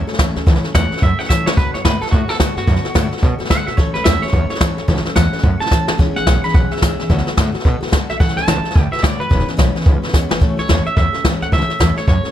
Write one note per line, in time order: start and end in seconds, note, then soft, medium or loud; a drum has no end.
0.07 0.19 F#3 soft
0.07 0.19 A3 medium
0.07 0.19 C#4 medium
0.07 0.18 A4 medium
0.07 muted upright bass stroke medium
0.07 snare soft
0.13 snare soft
0.19 0.35 E2 medium
0.19 0.36 A2 medium
0.19 0.36 E3 medium
0.19 0.37 F#3 medium
0.19 0.37 A3 loud
0.19 0.36 C#4 loud
0.19 0.35 A4 medium
0.19 kick medium
0.19 snare loud
0.19 hi-hat pedal loud
0.35 0.46 D2 loud
0.35 0.46 F#3 medium
0.35 0.46 A3 soft
0.35 0.47 C#4 medium
0.35 0.47 A4 medium
0.35 snare soft
0.46 0.63 C#2 loud
0.46 0.63 A2 loud
0.46 0.64 E3 loud
0.46 0.64 F#3 medium
0.46 0.64 A3 medium
0.46 0.63 C#4 loud
0.46 0.62 A4 loud
0.46 kick loud
0.46 snare soft
0.55 snare soft
0.63 0.74 F#3 medium
0.63 0.74 A3 medium
0.63 0.75 C#4 medium
0.63 0.74 A4 medium
0.63 snare soft
0.74 0.90 E2 loud
0.74 0.91 A2 medium
0.74 0.92 E3 medium
0.74 0.92 F#3 loud
0.74 0.92 A3 medium
0.74 0.91 C#4 medium
0.74 0.89 A4 medium
0.74 1.01 F#5 medium
0.74 kick medium
0.74 snare loud
0.74 hi-hat pedal medium
0.91 1.00 F#3 soft
0.91 1.02 A3 medium
0.91 1.02 C#4 medium
0.91 1.02 A4 medium
0.91 muted upright bass stroke medium
0.91 snare soft
0.97 snare soft
1.01 1.18 F#2 medium
1.01 1.19 F#3 medium
1.01 1.19 A3 medium
1.01 1.19 C#4 medium
1.01 1.18 A4 medium
1.01 1.19 E5 medium
1.01 kick loud
1.01 snare soft
1.19 1.29 F#3 soft
1.19 1.30 A3 soft
1.19 1.30 C#4 soft
1.19 1.30 A4 medium
1.19 1.29 F#5 medium
1.19 muted upright bass stroke medium
1.19 snare soft
1.25 snare soft
1.29 1.46 A2 loud
1.29 1.47 A2 medium
1.29 1.47 E3 medium
1.29 1.47 F#3 medium
1.29 1.47 A3 medium
1.29 1.47 C#4 medium
1.29 1.45 A4 medium
1.29 1.46 E5 medium
1.29 kick medium
1.29 snare medium
1.29 hi-hat pedal medium
1.46 1.57 E2 medium
1.46 1.58 A3 soft
1.46 1.58 C#4 medium
1.46 1.57 A4 soft
1.46 1.57 C#5 loud
1.46 snare medium
1.50 1.57 F#3 soft
1.57 1.73 D2 loud
1.57 1.74 D3 medium
1.57 1.75 F#3 medium
1.57 1.75 B3 medium
1.57 1.75 F#4 medium
1.57 1.73 A4 loud
1.57 1.74 B4 loud
1.57 kick loud
1.57 snare soft
1.74 1.84 F#2 medium
1.74 1.85 B3 soft
1.74 1.86 F#4 medium
1.74 1.85 A4 medium
1.74 1.84 C#5 medium
1.74 snare soft
1.85 2.01 A2 loud
1.85 2.02 D3 medium
1.85 2.02 F#3 medium
1.85 2.03 B3 loud
1.85 2.02 F#4 medium
1.85 2.00 A4 medium
1.85 2.01 B4 medium
1.85 kick medium
1.85 snare loud
1.85 hi-hat pedal medium
2.01 2.12 B3 soft
2.01 2.13 F#4 soft
2.01 2.12 A4 medium
2.01 2.11 A4 medium
2.01 muted upright bass stroke medium
2.01 snare soft
2.07 snare soft
2.11 2.28 A2 loud
2.11 2.29 F#3 medium
2.11 2.30 B3 medium
2.11 2.29 F#4 medium
2.11 2.28 F#4 medium
2.11 kick loud
2.11 snare soft
2.15 2.27 A4 medium
2.28 2.39 B3 soft
2.28 2.39 F#4 soft
2.28 2.39 A4 medium
2.28 2.40 A4 medium
2.28 muted upright bass stroke medium
2.28 snare soft
2.34 snare soft
2.39 2.56 A2 medium
2.39 2.56 D3 medium
2.39 2.57 F#3 medium
2.39 2.57 B3 medium
2.39 2.57 F#4 medium
2.39 2.55 A4 medium
2.39 kick medium
2.39 snare loud
2.39 hi-hat pedal medium
2.56 2.67 G2 medium
2.56 2.67 B3 soft
2.56 3.38 F#4 loud
2.56 2.68 F#4 medium
2.56 2.67 A4 medium
2.56 snare soft
2.67 2.84 F#2 medium
2.67 2.84 D3 medium
2.67 2.85 F#3 medium
2.67 2.85 B3 medium
2.67 2.85 F#4 medium
2.67 2.83 A4 loud
2.67 kick loud
2.67 snare soft
2.76 snare soft
2.84 2.94 B3 medium
2.84 2.95 F#4 medium
2.84 2.95 A4 medium
2.84 muted upright bass stroke medium
2.84 snare soft
2.94 3.11 A2 medium
2.94 3.12 D3 medium
2.94 3.12 F#3 loud
2.94 3.12 B3 loud
2.94 3.12 F#4 loud
2.94 3.10 A4 loud
2.94 kick medium
2.94 snare loud
2.94 hi-hat pedal medium
3.11 3.22 B3 soft
3.11 3.23 F#4 medium
3.11 3.22 A4 medium
3.11 muted upright bass stroke medium
3.11 snare soft
3.17 snare soft
3.21 3.39 B2 loud
3.21 3.39 F#3 medium
3.21 3.40 B3 medium
3.21 3.39 F#4 medium
3.21 3.37 A4 medium
3.21 kick loud
3.21 snare soft
3.39 3.49 B3 soft
3.39 3.49 F#4 medium
3.39 3.50 A4 medium
3.39 muted upright bass stroke medium
3.39 snare soft
3.45 3.67 D3 medium
3.45 snare soft
3.49 3.67 D3 loud
3.49 3.67 F#3 medium
3.49 3.67 B3 medium
3.49 3.66 F#4 medium
3.49 3.65 A4 medium
3.49 3.67 F#5 loud
3.49 kick medium
3.49 snare loud
3.49 hi-hat pedal medium
3.66 3.77 B2 medium
3.66 3.78 B3 soft
3.66 3.78 F#4 medium
3.66 3.77 A4 medium
3.66 3.77 E5 medium
3.66 snare soft
3.77 3.94 A1 medium
3.77 3.95 A2 medium
3.77 3.95 E3 medium
3.77 3.95 F#3 loud
3.77 3.95 A3 medium
3.77 3.94 C#4 medium
3.77 3.93 A4 loud
3.77 3.94 C#5 medium
3.77 kick loud
3.77 snare soft
3.94 4.05 C#2 medium
3.94 4.04 F#3 soft
3.94 4.05 A3 medium
3.94 4.05 C#4 soft
3.94 4.05 A4 medium
3.94 4.05 B4 loud
3.94 snare soft
4.04 4.22 E2 loud
4.04 4.22 A2 medium
4.04 4.23 E3 medium
4.04 4.23 F#3 medium
4.04 4.23 A3 medium
4.04 4.22 C#4 medium
4.04 4.21 A4 loud
4.04 4.21 E5 loud
4.04 kick medium
4.04 snare medium
4.04 hi-hat pedal medium
4.22 4.31 F#3 soft
4.22 4.33 A3 medium
4.22 4.33 C#4 soft
4.22 4.33 A4 medium
4.22 4.49 C#5 loud
4.22 muted upright bass stroke medium
4.22 snare soft
4.28 snare soft
4.32 4.49 E2 loud
4.32 4.50 F#3 medium
4.32 4.51 A3 medium
4.32 4.50 C#4 medium
4.32 4.48 A4 medium
4.32 kick loud
4.32 snare soft
4.49 4.60 F#3 soft
4.49 4.60 A3 medium
4.49 4.61 C#4 soft
4.49 4.61 A4 medium
4.49 5.04 C#5 medium
4.49 muted upright bass stroke medium
4.49 snare soft
4.55 snare soft
4.60 4.78 A2 medium
4.60 4.78 E3 medium
4.60 4.78 F#3 medium
4.60 4.78 A3 medium
4.60 4.77 C#4 medium
4.60 4.76 A4 loud
4.60 kick medium
4.60 snare loud
4.60 hi-hat pedal medium
4.77 4.87 D2 medium
4.77 4.88 F#3 soft
4.77 4.88 A3 soft
4.77 4.88 C#4 soft
4.77 4.88 A4 medium
4.77 snare soft
4.88 5.05 C#2 loud
4.88 5.05 A2 loud
4.88 5.05 E3 medium
4.88 5.06 F#3 loud
4.88 5.06 A3 medium
4.88 5.05 C#4 loud
4.88 5.04 A4 medium
4.88 kick loud
4.88 snare soft
4.97 snare soft
5.05 5.16 F#3 soft
5.05 5.16 A3 medium
5.05 5.16 C#4 medium
5.05 5.16 A4 medium
5.05 muted upright bass stroke medium
5.05 snare soft
5.15 5.32 E2 medium
5.15 5.33 A2 medium
5.15 5.33 E3 medium
5.15 5.34 F#3 medium
5.15 5.34 A3 medium
5.15 5.32 C#4 medium
5.15 5.31 A4 medium
5.15 5.59 F#5 medium
5.15 kick medium
5.15 snare loud
5.15 hi-hat pedal medium
5.33 5.41 F#3 soft
5.33 5.42 A3 medium
5.33 5.44 C#4 medium
5.33 5.44 A4 medium
5.33 snare soft
5.38 snare soft
5.43 5.60 F#2 loud
5.43 5.60 F#3 medium
5.43 5.61 A3 medium
5.43 5.60 C#4 medium
5.43 5.59 A4 medium
5.43 kick loud
5.43 snare soft
5.60 5.71 F#3 soft
5.60 5.71 A3 medium
5.60 5.72 C#4 soft
5.60 5.71 A4 medium
5.60 5.98 A5 medium
5.60 muted upright bass stroke medium
5.60 snare soft
5.66 snare soft
5.71 5.88 A2 medium
5.71 5.89 E3 medium
5.71 5.89 F#3 medium
5.71 5.89 A3 medium
5.71 5.87 C#4 medium
5.71 5.86 A4 medium
5.71 kick medium
5.71 snare medium
5.71 hi-hat pedal medium
5.87 5.99 F#1 medium
5.87 5.98 F#3 soft
5.87 5.99 A3 soft
5.87 5.99 C#4 medium
5.87 5.99 A4 medium
5.87 snare loud
5.98 6.15 E1 loud
5.98 6.16 E3 medium
5.98 6.16 G#3 medium
5.98 6.16 B3 loud
5.98 6.17 C#4 loud
5.98 6.15 G#4 loud
5.98 kick loud
5.98 snare soft
6.16 6.26 G#1 loud
6.16 6.26 B3 soft
6.16 6.27 C#4 medium
6.16 6.27 G#4 medium
6.16 6.43 F#5 loud
6.16 snare soft
6.26 6.43 B1 medium
6.26 6.44 E3 medium
6.26 6.44 G#3 medium
6.26 6.44 B3 medium
6.26 6.44 C#4 medium
6.26 6.42 G#4 loud
6.26 kick medium
6.26 snare loud
6.26 hi-hat pedal medium
6.43 6.54 B3 soft
6.43 6.55 C#4 medium
6.43 6.54 G#4 medium
6.43 6.54 B5 medium
6.43 muted upright bass stroke medium
6.43 snare soft
6.49 snare soft
6.54 6.71 B1 medium
6.54 6.71 G#3 medium
6.54 6.72 B3 medium
6.54 6.72 C#4 medium
6.54 6.70 G#4 medium
6.54 6.72 F#5 medium
6.54 kick loud
6.54 snare soft
6.71 6.81 B3 soft
6.71 6.82 C#4 soft
6.71 6.82 G#4 medium
6.71 7.25 E5 loud
6.71 muted upright bass stroke medium
6.71 snare soft
6.77 snare soft
6.81 6.98 B1 medium
6.81 6.99 E3 medium
6.81 6.99 G#3 medium
6.81 6.99 B3 medium
6.81 6.99 C#4 medium
6.81 6.97 G#4 medium
6.81 kick medium
6.81 snare loud
6.81 hi-hat pedal medium
6.98 7.09 E2 medium
6.98 7.10 B3 soft
6.98 7.10 C#4 medium
6.98 7.09 G#4 medium
6.98 snare soft
7.09 7.26 D2 loud
7.09 7.27 D3 medium
7.09 7.27 F#3 loud
7.09 7.27 B3 loud
7.09 7.27 F#4 loud
7.09 7.25 A4 loud
7.09 kick loud
7.09 snare soft
7.18 snare soft
7.26 7.37 B3 medium
7.26 7.37 F#4 medium
7.26 7.37 A4 medium
7.26 muted upright bass stroke medium
7.26 snare soft
7.37 7.54 A2 medium
7.37 7.54 D3 medium
7.37 7.54 F#3 medium
7.37 7.54 B3 loud
7.37 7.53 F#4 loud
7.37 7.51 A4 loud
7.37 kick medium
7.37 snare loud
7.37 hi-hat pedal medium
7.52 7.64 B3 medium
7.52 7.65 F#4 medium
7.52 7.64 A4 medium
7.52 muted upright bass stroke medium
7.52 snare soft
7.60 snare soft
7.64 7.81 B2 loud
7.64 7.82 F#3 medium
7.64 7.82 B3 medium
7.64 7.81 F#4 medium
7.64 7.79 A4 medium
7.64 kick loud
7.64 snare soft
7.81 7.91 B3 medium
7.81 7.92 F#4 medium
7.81 7.92 A4 medium
7.81 muted upright bass stroke medium
7.81 snare soft
7.87 8.09 D3 medium
7.87 snare soft
7.92 8.09 D3 loud
7.92 8.09 F#3 medium
7.92 8.09 B3 loud
7.92 8.09 F#4 medium
7.92 8.08 A4 loud
7.92 kick medium
7.92 snare loud
7.92 hi-hat pedal medium
8.09 8.20 B1 medium
8.09 8.21 B3 soft
8.09 8.21 F#4 medium
8.09 8.20 A4 medium
8.09 8.20 E5 loud
8.09 snare soft
8.20 8.36 A1 loud
8.20 8.37 A2 medium
8.20 8.37 E3 medium
8.20 8.38 F#3 medium
8.20 8.37 A3 loud
8.20 8.36 C#4 medium
8.20 8.35 A4 medium
8.20 8.37 F#5 loud
8.20 kick loud
8.20 snare soft
8.29 snare soft
8.36 8.47 C#2 loud
8.36 8.46 F#3 soft
8.36 8.47 A3 soft
8.36 8.47 C#4 medium
8.36 8.47 A4 medium
8.36 8.91 A5 loud
8.36 snare soft
8.46 8.64 C#2 loud
8.46 8.64 A2 medium
8.46 8.65 E3 medium
8.46 8.65 F#3 medium
8.46 8.65 A3 loud
8.46 8.64 C#4 loud
8.46 8.63 A4 medium
8.46 kick medium
8.46 snare loud
8.46 hi-hat pedal medium
8.64 8.73 F#3 medium
8.64 8.75 A3 medium
8.64 8.76 C#4 medium
8.64 8.75 A4 medium
8.64 snare soft
8.70 snare soft
8.75 8.92 D2 loud
8.75 8.92 F#3 medium
8.75 8.93 A3 medium
8.75 8.92 F#4 medium
8.75 8.90 B4 medium
8.75 kick loud
8.75 snare soft
8.92 9.02 A3 soft
8.92 9.03 F#4 soft
8.92 9.03 B4 medium
8.92 9.03 E5 medium
8.92 muted upright bass stroke medium
8.92 snare soft
8.98 snare soft
9.02 9.19 A2 loud
9.02 9.20 D3 medium
9.02 9.20 F#3 medium
9.02 9.20 A3 medium
9.02 9.20 F#4 medium
9.02 9.17 B4 medium
9.02 9.19 D5 medium
9.02 kick medium
9.02 snare loud
9.02 hi-hat pedal medium
9.19 9.30 F#2 medium
9.19 9.30 A3 soft
9.19 9.31 F#4 medium
9.19 9.30 B4 medium
9.19 9.47 B4 loud
9.19 snare soft
9.29 9.47 E1 loud
9.29 9.47 E3 medium
9.29 9.48 G#3 medium
9.29 9.48 B3 medium
9.29 9.47 C#4 loud
9.29 9.45 B4 medium
9.29 kick loud
9.29 snare soft
9.40 snare soft
9.47 9.57 B3 soft
9.47 9.57 C#4 medium
9.47 9.58 B4 medium
9.47 muted upright bass stroke medium
9.47 snare soft
9.57 9.75 B1 medium
9.57 9.75 E3 loud
9.57 9.75 G#3 loud
9.57 9.75 B3 loud
9.57 9.76 C#4 loud
9.57 9.74 B4 loud
9.57 kick medium
9.57 snare loud
9.57 hi-hat pedal medium
9.75 9.85 B3 medium
9.75 9.86 C#4 medium
9.75 9.86 B4 medium
9.75 muted upright bass stroke medium
9.75 snare soft
9.81 10.03 G#3 medium
9.81 snare soft
9.86 10.02 C#2 loud
9.86 10.03 B3 medium
9.86 10.03 C#4 medium
9.86 10.01 B4 medium
9.86 kick loud
9.86 snare soft
10.02 10.13 B3 soft
10.02 10.13 C#4 medium
10.02 10.13 B4 medium
10.02 snare soft
10.08 snare soft
10.13 10.30 E2 medium
10.13 10.30 E3 medium
10.13 10.31 G#3 medium
10.13 10.31 B3 loud
10.13 10.30 C#4 loud
10.13 10.28 B4 loud
10.13 kick medium
10.13 snare medium
10.13 hi-hat pedal medium
10.29 10.41 G#1 medium
10.29 10.41 B3 medium
10.29 10.41 C#4 medium
10.29 10.41 B4 medium
10.29 snare loud
10.40 10.57 A1 loud
10.40 10.58 A2 medium
10.40 10.58 E3 medium
10.40 10.58 F#3 medium
10.40 10.58 A3 loud
10.40 10.57 C#4 loud
10.40 10.56 A4 loud
10.40 kick loud
10.40 snare soft
10.57 10.68 C#2 loud
10.57 10.68 F#3 soft
10.57 10.68 A3 soft
10.57 10.69 C#4 medium
10.57 10.68 A4 medium
10.57 10.85 C#5 medium
10.57 snare soft
10.68 10.85 E2 medium
10.68 10.86 A2 medium
10.68 10.86 E3 medium
10.68 10.86 F#3 medium
10.68 10.86 A3 medium
10.68 10.85 C#4 medium
10.68 10.84 A4 medium
10.68 kick medium
10.68 snare medium
10.68 hi-hat pedal medium
10.85 10.94 F#3 soft
10.85 10.96 A3 soft
10.85 10.96 C#4 soft
10.85 10.96 A4 medium
10.85 10.96 E5 medium
10.85 muted upright bass stroke medium
10.85 snare soft
10.96 11.13 E2 medium
10.96 11.13 F#3 medium
10.96 11.14 A3 medium
10.96 11.13 C#4 medium
10.96 11.11 A4 medium
10.96 11.23 E5 loud
10.96 kick loud
10.96 snare soft
11.13 11.24 F#3 soft
11.13 11.24 A3 soft
11.13 11.25 C#4 medium
11.13 11.24 A4 medium
11.13 snare soft
11.24 11.41 E2 loud
11.24 11.42 A2 medium
11.24 11.42 E3 medium
11.24 11.42 F#3 medium
11.24 11.42 A3 medium
11.24 11.40 C#4 medium
11.24 11.39 A4 medium
11.24 kick medium
11.24 snare loud
11.24 hi-hat pedal medium
11.41 11.52 D2 medium
11.41 11.52 F#3 soft
11.41 11.52 A3 soft
11.41 11.52 C#4 soft
11.41 11.52 A4 medium
11.41 11.47 F#5 loud
11.41 snare soft
11.52 11.68 C#2 loud
11.52 11.69 A2 medium
11.52 11.70 E3 medium
11.52 11.70 F#3 medium
11.52 11.69 A3 medium
11.52 11.68 C#4 medium
11.52 11.67 A4 loud
11.52 11.97 E5 loud
11.52 kick loud
11.52 snare soft
11.61 snare soft
11.68 11.79 F#3 soft
11.68 11.79 A3 soft
11.68 11.79 C#4 soft
11.68 11.80 A4 medium
11.68 muted upright bass stroke medium
11.68 snare soft
11.79 11.96 E2 medium
11.79 11.97 A2 medium
11.79 11.97 E3 medium
11.79 11.97 F#3 medium
11.79 11.97 A3 medium
11.79 11.96 C#4 medium
11.79 11.95 A4 loud
11.79 kick medium
11.79 snare loud
11.79 hi-hat pedal medium
11.96 12.06 F#3 soft
11.96 12.07 A3 medium
11.96 12.08 C#4 soft
11.96 12.07 A4 soft
11.96 12.08 C#5 medium
11.96 muted upright bass stroke medium
11.96 snare soft
12.07 12.24 F#2 loud
12.07 12.24 F#3 medium
12.07 12.24 A3 medium
12.07 12.23 C#4 medium
12.07 12.22 A4 medium
12.07 12.31 C#5 medium
12.07 kick loud
12.07 snare soft
12.23 12.31 F#3 soft
12.23 12.31 A3 soft
12.23 12.31 C#4 medium
12.23 12.31 A4 medium
12.23 muted upright bass stroke medium
12.23 snare soft